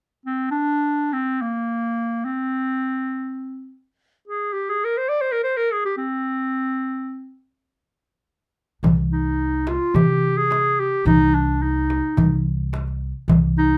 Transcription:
0.26 0.50 C4 medium
0.51 1.15 D4 medium
1.13 1.43 C4 medium
1.42 2.26 A#3 medium
2.25 3.74 C4 medium
4.28 4.55 G#4 medium
4.53 4.71 G4 medium
4.70 4.86 G#4 medium
4.84 4.99 A#4 medium
4.98 5.11 C5 medium
5.09 5.23 D5 medium
5.21 5.33 C5 medium
5.32 5.43 A#4 medium
5.44 5.58 C5 medium
5.57 5.73 A#4 medium
5.72 5.84 G#4 medium
5.85 5.96 G4 medium
5.98 7.37 C4 medium
8.83 9.77 C2 medium
8.83 frame drum medium
8.83 darbuka dum medium
9.12 9.70 D#4 medium
9.12 darbuka ka soft
9.67 9.97 F4 medium
9.67 darbuka tek medium
9.67 frame drum medium
9.94 10.88 C3 medium
9.94 10.39 G4 medium
9.94 frame drum medium
9.94 darbuka dum medium
10.38 10.82 G#4 medium
10.51 darbuka tek medium
10.51 frame drum medium
10.67 darbuka ka soft
10.80 11.06 G4 medium
11.05 11.99 C2 medium
11.05 11.36 D#4 medium
11.05 frame drum medium
11.05 darbuka dum medium
11.35 11.64 D4 medium
11.35 darbuka ka soft
11.62 12.46 D#4 medium
11.90 frame drum medium
12.17 13.11 C2 medium
12.17 frame drum medium
12.17 darbuka dum medium
12.73 darbuka tek medium
12.73 frame drum soft
12.88 darbuka ka soft
13.28 13.78 C2 medium
13.28 frame drum medium
13.28 darbuka dum medium
13.57 13.78 D#4 medium
13.57 darbuka ka soft

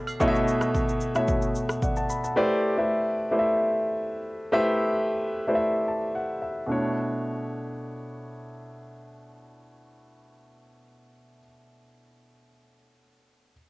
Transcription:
0.00 0.20 B2 loud
0.00 0.20 A3 loud
0.00 0.21 E4 loud
0.00 0.21 C#5 loud
0.00 1.83 D5 loud
0.00 0.28 E5 medium
0.07 high agogo medium
0.07 shaker soft
0.20 0.96 B2 loud
0.20 0.96 A3 loud
0.20 0.96 E4 loud
0.20 0.96 C#5 loud
0.20 0.27 D#5 loud
0.20 kick loud
0.20 shaker medium
0.28 1.00 E5 loud
0.35 shaker soft
0.48 shaker medium
0.61 cross-stick medium
0.61 shaker medium
0.74 kick medium
0.74 shaker medium
0.89 shaker soft
1.01 shaker medium
1.15 2.01 B2 medium
1.15 2.02 A3 medium
1.15 2.02 E4 medium
1.15 1.56 C#5 medium
1.15 1.56 E5 loud
1.15 cross-stick medium
1.15 shaker medium
1.28 kick loud
1.28 shaker medium
1.42 shaker soft
1.55 shaker medium
1.69 cross-stick loud
1.69 shaker medium
1.82 1.96 D5 medium
1.82 1.96 F#5 medium
1.82 kick medium
1.82 shaker medium
1.96 2.09 F#5 medium
1.96 2.09 A5 medium
1.96 shaker medium
2.09 2.23 B5 medium
2.09 shaker medium
2.24 2.50 F#5 medium
2.24 2.49 A5 medium
2.24 shaker soft
2.36 2.69 A3 loud
2.36 2.69 E4 loud
2.36 2.69 G4 loud
2.36 2.69 B4 loud
2.36 2.69 C5 loud
2.36 2.69 D5 loud
2.77 3.20 A3 medium
2.77 3.20 E4 medium
2.77 3.20 G4 medium
2.77 3.21 B4 medium
2.77 3.21 C5 medium
2.77 3.21 E5 medium
3.31 4.18 A3 medium
3.31 4.18 E4 medium
3.31 4.18 G4 medium
3.31 4.18 B4 medium
3.31 4.18 C5 medium
3.31 3.38 D5 medium
3.39 4.21 E5 medium
4.52 5.28 A3 loud
4.52 5.28 E4 loud
4.52 5.29 G4 loud
4.52 5.29 B4 loud
4.52 5.29 C5 loud
4.52 5.29 E5 loud
5.47 6.34 A3 medium
5.47 6.34 E4 medium
5.47 6.34 G4 medium
5.47 6.34 B4 medium
5.47 6.34 C5 medium
5.47 5.54 D5 medium
5.55 6.38 E5 medium
5.88 6.13 A5 medium
6.15 6.40 F#5 medium
6.42 6.67 E5 medium
6.66 11.38 B2 medium
6.66 11.39 A3 medium
6.66 11.40 D4 medium
6.66 11.42 E4 medium
6.72 11.43 C#5 medium

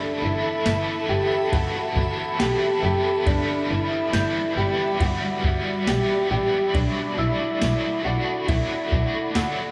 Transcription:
0.00 0.22 G2 medium
0.00 0.22 D3 loud
0.00 0.22 E3 medium
0.00 0.23 A3 loud
0.00 0.22 B3 loud
0.00 0.22 D4 medium
0.00 0.20 E4 loud
0.00 3.23 A4 medium
0.00 6.71 E5 medium
0.00 3.23 A5 medium
0.00 6.71 B5 medium
0.21 0.30 G1 loud
0.21 0.64 E3 soft
0.21 0.65 A3 soft
0.21 0.66 B3 medium
0.21 0.65 E4 medium
0.21 1.09 E4 medium
0.65 0.74 G1 loud
0.65 1.09 E3 medium
0.65 1.09 A3 medium
0.65 1.09 B3 medium
0.65 1.08 E4 medium
0.65 snare loud
0.65 ride medium
0.65 tambourine medium
1.09 1.17 G1 loud
1.09 1.52 E3 medium
1.09 1.52 A3 medium
1.09 1.53 B3 medium
1.09 1.52 E4 medium
1.09 1.52 G4 medium
1.52 1.61 G1 loud
1.52 1.96 G2 loud
1.52 1.96 D3 medium
1.52 1.96 E3 medium
1.52 1.97 A3 medium
1.52 1.95 B3 loud
1.52 1.94 E4 loud
1.52 2.39 F#4 medium
1.52 kick medium
1.52 ride medium
1.95 2.04 G1 loud
1.95 2.37 E3 soft
1.95 2.38 A3 medium
1.95 2.40 B3 medium
1.95 2.39 E4 medium
1.95 kick medium
2.38 2.48 B1 medium
2.38 2.82 E3 medium
2.38 2.83 A3 medium
2.38 2.82 B3 medium
2.38 2.81 E4 medium
2.38 2.82 G4 medium
2.38 snare loud
2.38 ride medium
2.38 tambourine medium
2.82 2.91 F#1 loud
2.82 3.26 E3 medium
2.82 3.27 A3 medium
2.82 3.26 B3 medium
2.82 3.26 E4 medium
2.82 3.27 G4 medium
3.26 3.35 G1 loud
3.26 3.70 G2 medium
3.26 3.70 D3 medium
3.26 3.70 E3 medium
3.26 3.70 G3 loud
3.26 6.71 G3 medium
3.26 3.69 B3 loud
3.26 3.70 D4 medium
3.26 3.68 E4 loud
3.26 6.71 D5 medium
3.26 kick loud
3.26 ride medium
3.69 3.78 G1 loud
3.69 4.12 E3 soft
3.69 4.13 G3 soft
3.69 4.14 B3 medium
3.69 4.13 E4 medium
3.69 4.57 E4 medium
4.13 4.21 G1 loud
4.13 4.57 E3 medium
4.13 4.57 G3 medium
4.13 4.56 B3 medium
4.13 4.55 E4 medium
4.13 6.51 G6 medium
4.13 snare loud
4.13 ride medium
4.13 tambourine medium
4.56 4.64 G1 loud
4.56 5.00 E3 medium
4.56 5.00 G3 medium
4.56 5.01 B3 medium
4.56 5.00 E4 medium
4.56 5.00 G4 medium
5.00 5.08 G1 loud
5.00 5.44 G2 medium
5.00 5.44 D3 medium
5.00 5.44 E3 medium
5.00 5.44 G3 loud
5.00 5.43 B3 loud
5.00 5.42 E4 medium
5.00 5.87 F#4 loud
5.00 kick loud
5.00 ride medium
5.43 5.52 G1 loud
5.43 5.85 E3 soft
5.43 5.87 G3 medium
5.43 5.88 B3 medium
5.43 5.87 E4 medium
5.43 kick medium
5.87 5.95 B1 medium
5.87 6.31 E3 medium
5.87 6.31 G3 medium
5.87 6.30 B3 medium
5.87 6.29 E4 medium
5.87 6.30 G4 medium
5.87 snare loud
5.87 ride medium
5.87 tambourine medium
6.30 6.39 A1 loud
6.30 6.74 E3 medium
6.30 6.75 G3 medium
6.30 6.75 B3 medium
6.30 6.74 E4 medium
6.30 6.74 G4 medium
6.74 6.82 B1 loud
6.74 7.17 B2 medium
6.74 7.18 F#3 loud
6.74 7.18 A3 medium
6.74 7.18 D4 medium
6.74 7.16 F#4 loud
6.74 9.71 A4 medium
6.74 9.71 D5 medium
6.74 9.71 F#5 medium
6.74 9.71 B5 medium
6.74 kick loud
6.74 ride medium
7.17 7.26 B1 medium
7.17 7.61 A3 soft
7.17 7.62 D4 soft
7.17 8.05 E4 medium
7.17 7.61 F#4 medium
7.17 9.55 E6 medium
7.61 7.70 B1 loud
7.61 8.05 F#3 medium
7.61 8.05 A3 medium
7.61 8.05 D4 medium
7.61 8.03 F#4 medium
7.61 snare loud
7.61 ride medium
7.61 tambourine medium
8.04 8.13 B1 medium
8.04 8.48 A3 soft
8.04 8.49 D4 medium
8.04 8.48 F#4 medium
8.48 8.56 B1 loud
8.48 8.92 B2 medium
8.48 8.92 F#3 medium
8.48 8.92 A3 medium
8.48 8.92 D4 loud
8.48 9.35 E4 medium
8.48 8.90 F#4 loud
8.48 kick loud
8.48 ride medium
8.91 9.00 B1 loud
8.91 9.35 A3 soft
8.91 9.36 D4 soft
8.91 9.35 F#4 medium
8.91 kick medium
9.34 9.43 D2 medium
9.34 9.71 F#3 medium
9.34 9.71 A3 medium
9.34 9.71 D4 medium
9.34 9.71 F#4 medium
9.34 snare loud
9.34 ride medium
9.34 tambourine medium

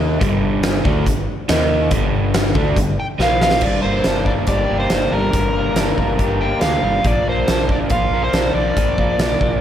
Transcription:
0.00 0.18 D#2 medium
0.00 0.19 D#3 medium
0.00 0.20 A#3 medium
0.00 0.20 D#4 loud
0.19 0.81 G1 loud
0.19 0.83 G2 medium
0.19 0.84 D3 loud
0.19 0.84 G3 loud
0.19 kick loud
0.19 closed hi-hat medium
0.63 snare loud
0.63 closed hi-hat medium
0.85 1.05 D2 loud
0.85 1.05 D3 loud
0.85 1.06 A3 loud
0.85 1.06 D4 loud
0.85 kick loud
1.06 1.26 G1 medium
1.06 1.23 G2 medium
1.06 1.23 D3 medium
1.06 kick medium
1.06 closed hi-hat medium
1.49 1.89 D#2 medium
1.49 1.91 D#3 medium
1.49 1.91 A#3 loud
1.49 1.91 D#4 loud
1.49 snare loud
1.49 closed hi-hat medium
1.91 2.52 G1 loud
1.91 2.55 G2 medium
1.91 2.54 D3 medium
1.91 2.55 G3 medium
1.91 kick loud
1.91 closed hi-hat medium
2.34 snare loud
2.34 closed hi-hat medium
2.55 2.75 D2 medium
2.55 2.76 D3 medium
2.55 2.77 A3 loud
2.55 2.77 D4 loud
2.55 kick loud
2.76 2.96 G1 medium
2.76 2.94 G2 medium
2.76 2.95 D3 medium
2.76 kick medium
2.76 closed hi-hat medium
3.00 3.05 G5 medium
3.19 3.62 A#1 medium
3.19 3.61 A#2 medium
3.19 3.62 F3 medium
3.19 3.62 A#3 medium
3.19 3.41 F5 medium
3.19 snare medium
3.41 3.64 F5 medium
3.41 snare medium
3.51 snare medium
3.61 3.78 G1 medium
3.61 4.70 G2 medium
3.61 3.82 D5 medium
3.61 kick loud
3.61 crash medium
3.82 4.00 G1 medium
3.82 4.27 A#3 medium
3.82 4.25 C5 medium
4.04 4.38 G1 medium
4.04 4.91 D4 medium
4.04 snare medium
4.04 closed hi-hat medium
4.25 4.69 A#3 medium
4.25 4.31 D5 medium
4.25 kick medium
4.47 4.64 G1 medium
4.47 5.55 G4 medium
4.47 4.79 D5 medium
4.47 kick medium
4.47 closed hi-hat medium
4.70 4.87 G1 medium
4.70 5.56 A#3 medium
4.79 5.13 C5 medium
4.90 5.07 G1 medium
4.90 5.76 D4 medium
4.90 snare loud
4.90 closed hi-hat medium
5.12 5.29 G1 medium
5.12 6.20 G3 medium
5.12 6.45 A#4 medium
5.33 5.50 G1 medium
5.33 6.42 G2 medium
5.33 kick loud
5.33 closed hi-hat medium
5.54 5.71 G1 medium
5.54 5.99 A#3 medium
5.74 5.91 G1 medium
5.74 6.61 D4 medium
5.74 snare medium
5.74 closed hi-hat medium
5.98 6.14 G1 medium
5.98 6.41 A#3 medium
5.98 kick medium
6.19 6.52 G1 medium
6.19 7.05 G4 medium
6.19 kick loud
6.19 closed hi-hat medium
6.41 7.28 A#3 medium
6.41 6.61 G5 medium
6.61 6.78 D2 medium
6.61 7.50 D4 medium
6.61 6.82 F5 medium
6.61 snare medium
6.61 closed hi-hat medium
6.83 7.00 G1 medium
6.83 7.05 G3 medium
6.83 7.04 F5 medium
7.04 7.21 A#1 medium
7.04 8.12 A#2 medium
7.04 7.28 D5 medium
7.04 kick medium
7.04 closed hi-hat medium
7.27 7.43 A#1 medium
7.27 7.70 A#3 medium
7.27 7.71 C5 medium
7.48 7.81 A#1 medium
7.48 8.32 D4 medium
7.48 snare loud
7.48 closed hi-hat medium
7.69 8.13 A#3 medium
7.69 7.77 D5 medium
7.69 kick medium
7.90 8.07 A#1 medium
7.90 8.99 F4 medium
7.90 8.21 F5 medium
7.90 kick loud
7.90 closed hi-hat medium
8.11 8.28 A#1 medium
8.11 8.98 A#3 medium
8.24 8.54 C5 medium
8.33 8.50 A#1 medium
8.33 9.20 D4 medium
8.33 snare medium
8.33 closed hi-hat medium
8.54 8.71 A#1 medium
8.54 9.61 F3 medium
8.54 9.61 D5 medium
8.77 8.93 A#1 medium
8.77 9.61 A#2 medium
8.77 kick loud
8.77 closed hi-hat medium
8.98 9.15 A#1 medium
8.98 9.42 A#3 medium
8.98 kick medium
9.19 9.36 A#1 medium
9.19 9.61 D4 medium
9.19 snare loud
9.19 closed hi-hat medium
9.41 9.57 A#1 medium
9.41 9.61 A#3 medium
9.41 kick medium

